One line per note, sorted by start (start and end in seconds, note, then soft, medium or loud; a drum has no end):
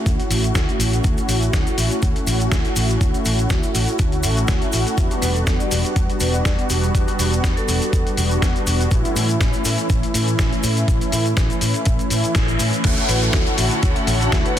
0.00 0.27 A3 medium
0.00 0.28 C#4 medium
0.00 0.28 E4 medium
0.00 0.28 F#4 loud
0.06 0.16 D2 medium
0.06 kick loud
0.06 closed hi-hat medium
0.06 cabasa soft
0.06 shaker soft
0.20 closed hi-hat soft
0.20 shaker soft
0.29 0.50 A1 medium
0.29 1.01 A3 loud
0.29 1.01 C#4 medium
0.29 1.02 E4 medium
0.29 1.02 F#4 loud
0.29 open hi-hat loud
0.29 cabasa medium
0.29 shaker medium
0.44 closed hi-hat soft
0.44 cabasa soft
0.44 shaker soft
0.55 0.65 D2 medium
0.55 kick loud
0.55 snare loud
0.55 closed hi-hat medium
0.55 cabasa medium
0.55 shaker soft
0.69 closed hi-hat soft
0.69 shaker soft
0.79 0.99 A1 medium
0.79 open hi-hat loud
0.79 cabasa medium
0.79 shaker medium
0.93 closed hi-hat soft
0.93 cabasa soft
0.93 shaker soft
1.03 1.14 D2 medium
1.03 2.24 A3 medium
1.03 2.24 C#4 medium
1.03 2.25 E4 medium
1.03 2.25 F#4 loud
1.03 kick loud
1.03 closed hi-hat medium
1.03 cabasa soft
1.03 shaker soft
1.18 closed hi-hat soft
1.18 cabasa soft
1.18 shaker soft
1.28 1.48 A1 medium
1.28 open hi-hat loud
1.28 cabasa loud
1.28 shaker medium
1.42 closed hi-hat soft
1.42 cabasa soft
1.42 shaker soft
1.53 1.64 D2 medium
1.53 kick loud
1.53 snare loud
1.53 closed hi-hat medium
1.53 cabasa soft
1.53 shaker soft
1.67 closed hi-hat soft
1.67 cabasa soft
1.67 shaker soft
1.78 1.88 A1 medium
1.78 open hi-hat loud
1.78 cabasa medium
1.78 shaker medium
1.91 closed hi-hat soft
1.91 cabasa soft
1.91 shaker soft
2.02 2.13 D2 medium
2.02 kick loud
2.02 closed hi-hat medium
2.02 cabasa medium
2.02 shaker soft
2.16 closed hi-hat soft
2.16 shaker soft
2.26 2.46 A1 loud
2.26 2.98 A3 medium
2.26 2.98 C#4 medium
2.26 2.98 E4 medium
2.26 2.98 F#4 loud
2.26 open hi-hat loud
2.26 cabasa medium
2.26 shaker medium
2.40 closed hi-hat soft
2.40 cabasa soft
2.40 shaker soft
2.52 2.62 D2 medium
2.52 kick loud
2.52 snare loud
2.52 closed hi-hat medium
2.52 cabasa medium
2.52 shaker soft
2.65 closed hi-hat soft
2.65 shaker soft
2.76 2.96 A1 medium
2.76 open hi-hat medium
2.76 cabasa loud
2.76 shaker medium
2.89 closed hi-hat soft
2.89 cabasa soft
2.89 shaker soft
2.99 3.11 D2 medium
2.99 4.20 A3 medium
2.99 4.21 C#4 medium
2.99 4.21 E4 medium
2.99 4.21 F#4 medium
2.99 kick loud
2.99 closed hi-hat medium
2.99 cabasa medium
2.99 shaker soft
3.14 closed hi-hat soft
3.14 cabasa soft
3.14 shaker soft
3.25 3.45 A1 medium
3.25 open hi-hat loud
3.25 cabasa medium
3.25 shaker medium
3.39 closed hi-hat soft
3.39 cabasa soft
3.39 shaker soft
3.50 3.60 D2 medium
3.50 kick loud
3.50 snare loud
3.50 closed hi-hat medium
3.50 cabasa medium
3.50 shaker soft
3.63 closed hi-hat soft
3.63 cabasa soft
3.63 shaker soft
3.75 3.85 A1 medium
3.75 open hi-hat medium
3.75 cabasa medium
3.75 shaker medium
3.88 closed hi-hat soft
3.88 cabasa soft
3.88 shaker soft
3.98 4.25 D2 medium
3.98 kick loud
3.98 closed hi-hat medium
3.98 cabasa soft
3.98 shaker soft
4.12 closed hi-hat soft
4.12 shaker soft
4.23 4.43 A1 loud
4.23 4.94 A3 medium
4.23 4.95 C#4 medium
4.23 4.95 E4 medium
4.23 4.95 F#4 loud
4.23 open hi-hat loud
4.23 cabasa medium
4.23 shaker medium
4.37 closed hi-hat soft
4.37 cabasa soft
4.37 shaker soft
4.47 4.59 D2 loud
4.47 kick loud
4.47 snare loud
4.47 closed hi-hat medium
4.47 cabasa soft
4.47 shaker soft
4.62 closed hi-hat soft
4.62 shaker soft
4.72 4.83 A1 medium
4.72 open hi-hat medium
4.72 cabasa loud
4.72 shaker medium
4.87 closed hi-hat soft
4.87 cabasa soft
4.87 shaker soft
4.96 5.08 E2 medium
4.96 6.17 G3 medium
4.96 6.18 B3 medium
4.96 6.18 D4 medium
4.96 6.18 F#4 loud
4.96 kick loud
4.96 closed hi-hat medium
4.96 cabasa medium
4.96 shaker soft
5.11 closed hi-hat soft
5.11 cabasa soft
5.11 shaker soft
5.22 5.42 E1 medium
5.22 5.33 B4 medium
5.22 open hi-hat loud
5.22 cabasa medium
5.22 shaker medium
5.35 5.50 A4 medium
5.35 closed hi-hat soft
5.35 cabasa soft
5.35 shaker soft
5.47 5.57 E2 medium
5.47 kick loud
5.47 snare loud
5.47 closed hi-hat medium
5.47 cabasa soft
5.47 shaker soft
5.59 5.75 D5 medium
5.59 closed hi-hat soft
5.59 cabasa soft
5.59 shaker soft
5.71 5.82 E1 medium
5.71 open hi-hat medium
5.71 cabasa medium
5.71 shaker medium
5.84 closed hi-hat soft
5.84 cabasa soft
5.84 shaker soft
5.96 6.06 E2 medium
5.96 kick loud
5.96 closed hi-hat medium
5.96 cabasa soft
5.96 shaker soft
6.10 closed hi-hat soft
6.10 shaker soft
6.20 6.40 E1 medium
6.20 6.91 G3 medium
6.20 6.92 B3 medium
6.20 6.92 D4 medium
6.20 6.92 F#4 loud
6.20 6.31 B4 medium
6.20 open hi-hat loud
6.20 cabasa loud
6.20 shaker medium
6.34 6.41 D5 medium
6.34 closed hi-hat soft
6.34 cabasa soft
6.34 shaker soft
6.45 6.55 E2 medium
6.45 6.54 D5 medium
6.45 kick loud
6.45 snare loud
6.45 closed hi-hat medium
6.45 cabasa medium
6.45 shaker soft
6.59 closed hi-hat soft
6.59 shaker soft
6.69 6.89 E1 medium
6.69 open hi-hat medium
6.69 cabasa medium
6.69 shaker medium
6.83 closed hi-hat soft
6.83 cabasa soft
6.83 shaker soft
6.93 7.05 E2 medium
6.93 8.14 G3 medium
6.93 8.14 B3 medium
6.93 8.15 D4 medium
6.93 8.15 F#4 loud
6.93 kick loud
6.93 closed hi-hat medium
6.93 cabasa soft
6.93 shaker soft
7.08 closed hi-hat soft
7.08 cabasa soft
7.08 shaker soft
7.19 7.38 E1 loud
7.19 open hi-hat loud
7.19 cabasa medium
7.19 shaker medium
7.33 closed hi-hat soft
7.33 cabasa soft
7.33 shaker soft
7.44 7.54 E2 medium
7.44 kick loud
7.44 snare loud
7.44 closed hi-hat medium
7.44 cabasa soft
7.44 shaker soft
7.57 8.06 A4 medium
7.57 closed hi-hat soft
7.57 cabasa soft
7.57 shaker soft
7.68 7.78 E1 medium
7.68 open hi-hat medium
7.68 cabasa medium
7.68 shaker medium
7.82 closed hi-hat soft
7.82 cabasa soft
7.82 shaker soft
7.93 8.03 E2 medium
7.93 kick loud
7.93 closed hi-hat medium
7.93 cabasa medium
7.93 shaker soft
8.07 closed hi-hat soft
8.07 shaker soft
8.16 8.37 E1 loud
8.16 8.88 G3 medium
8.16 8.88 B3 medium
8.16 8.89 D4 medium
8.16 8.89 F#4 loud
8.16 open hi-hat loud
8.16 cabasa medium
8.16 shaker medium
8.31 closed hi-hat soft
8.31 cabasa soft
8.31 shaker soft
8.42 8.52 E2 medium
8.42 kick loud
8.42 snare loud
8.42 closed hi-hat medium
8.42 cabasa medium
8.42 shaker soft
8.56 closed hi-hat soft
8.56 shaker soft
8.67 8.86 E1 medium
8.67 open hi-hat medium
8.67 cabasa medium
8.67 shaker medium
8.81 closed hi-hat soft
8.81 cabasa soft
8.81 shaker soft
8.90 9.01 A1 medium
8.90 10.11 E3 medium
8.90 10.11 A3 medium
8.90 10.11 C#4 medium
8.90 10.12 E4 loud
8.90 kick loud
8.90 closed hi-hat medium
8.90 cabasa medium
8.90 shaker soft
9.05 closed hi-hat soft
9.05 cabasa soft
9.05 shaker soft
9.15 9.35 A2 medium
9.15 open hi-hat loud
9.15 cabasa medium
9.15 shaker medium
9.29 closed hi-hat soft
9.29 cabasa soft
9.29 shaker soft
9.41 9.51 A1 medium
9.41 kick loud
9.41 snare loud
9.41 closed hi-hat medium
9.41 cabasa soft
9.41 shaker soft
9.53 closed hi-hat soft
9.53 cabasa soft
9.53 shaker soft
9.65 9.75 A2 medium
9.65 open hi-hat medium
9.65 cabasa medium
9.65 shaker medium
9.78 closed hi-hat soft
9.78 cabasa soft
9.78 shaker soft
9.89 10.00 A1 medium
9.89 kick loud
9.89 closed hi-hat medium
9.89 cabasa medium
9.89 shaker soft
10.03 closed hi-hat soft
10.03 shaker soft
10.13 10.33 A2 loud
10.13 10.85 E3 medium
10.13 10.85 A3 medium
10.13 10.85 C#4 medium
10.13 10.86 E4 loud
10.13 open hi-hat medium
10.13 cabasa medium
10.13 shaker medium
10.28 closed hi-hat soft
10.28 cabasa soft
10.28 shaker soft
10.39 10.49 A1 medium
10.39 kick loud
10.39 snare loud
10.39 closed hi-hat medium
10.39 cabasa medium
10.39 shaker soft
10.53 closed hi-hat soft
10.53 shaker soft
10.63 10.83 A2 medium
10.63 open hi-hat medium
10.63 cabasa medium
10.63 shaker medium
10.77 closed hi-hat soft
10.77 cabasa soft
10.77 shaker soft
10.87 10.98 A1 medium
10.87 12.08 E3 medium
10.87 12.08 A3 medium
10.87 12.08 C#4 medium
10.87 12.08 E4 loud
10.87 kick loud
10.87 closed hi-hat medium
10.87 cabasa soft
10.87 shaker soft
11.01 closed hi-hat soft
11.01 cabasa soft
11.01 shaker soft
11.12 11.32 A2 medium
11.12 open hi-hat loud
11.12 cabasa medium
11.12 shaker medium
11.26 closed hi-hat soft
11.26 cabasa soft
11.26 shaker soft
11.37 11.47 A1 medium
11.37 kick loud
11.37 snare loud
11.37 closed hi-hat medium
11.37 cabasa soft
11.37 shaker soft
11.50 closed hi-hat soft
11.50 cabasa soft
11.50 shaker soft
11.61 11.72 A2 medium
11.61 open hi-hat medium
11.61 cabasa medium
11.61 shaker medium
11.74 closed hi-hat soft
11.74 cabasa soft
11.74 shaker soft
11.85 11.96 A1 medium
11.85 kick loud
11.85 closed hi-hat medium
11.85 cabasa soft
11.85 shaker soft
11.99 closed hi-hat soft
11.99 cabasa soft
11.99 shaker soft
12.10 12.21 A2 loud
12.10 12.81 E3 medium
12.10 12.82 A3 medium
12.10 12.82 C#4 medium
12.10 12.82 E4 loud
12.10 open hi-hat loud
12.10 cabasa medium
12.10 shaker medium
12.24 muted fingered electric bass stroke soft
12.24 closed hi-hat soft
12.24 cabasa soft
12.24 shaker soft
12.35 12.55 A1 loud
12.35 kick loud
12.35 snare loud
12.35 closed hi-hat medium
12.35 cabasa soft
12.35 shaker soft
12.48 closed hi-hat soft
12.48 cabasa soft
12.48 shaker soft
12.59 12.70 A2 loud
12.59 open hi-hat medium
12.59 cabasa medium
12.59 shaker medium
12.73 closed hi-hat soft
12.73 cabasa soft
12.73 shaker soft
12.83 12.95 D2 medium
12.83 14.59 D3 medium
12.83 14.04 A3 medium
12.83 14.05 C#4 medium
12.83 14.05 E4 medium
12.83 14.05 F#4 loud
12.83 14.59 A4 medium
12.83 14.59 C#5 medium
12.83 14.59 F#5 medium
12.83 kick loud
12.83 closed hi-hat medium
12.83 crash loud
12.83 downlifter medium
12.83 shaker soft
12.97 closed hi-hat soft
12.97 shaker soft
13.09 13.28 A1 medium
13.09 13.20 B4 medium
13.09 open hi-hat loud
13.09 shaker medium
13.22 13.37 A4 medium
13.22 closed hi-hat soft
13.22 shaker soft
13.33 13.44 D2 medium
13.33 kick loud
13.33 snare loud
13.33 closed hi-hat medium
13.33 shaker soft
13.46 closed hi-hat soft
13.46 shaker soft
13.58 13.69 A1 medium
13.58 open hi-hat loud
13.58 shaker medium
13.71 closed hi-hat soft
13.71 shaker soft
13.83 13.93 D2 medium
13.83 kick loud
13.83 closed hi-hat medium
13.83 shaker soft
13.96 closed hi-hat soft
13.96 shaker soft
14.07 14.27 A1 loud
14.07 open hi-hat loud
14.07 shaker medium
14.19 14.59 A3 medium
14.19 14.59 C#4 medium
14.19 14.59 E4 medium
14.19 14.59 F#4 medium
14.19 closed hi-hat soft
14.19 shaker soft
14.32 14.42 D2 medium
14.32 kick loud
14.32 snare loud
14.32 closed hi-hat medium
14.32 shaker soft
14.45 14.59 B4 medium
14.45 closed hi-hat soft
14.45 shaker soft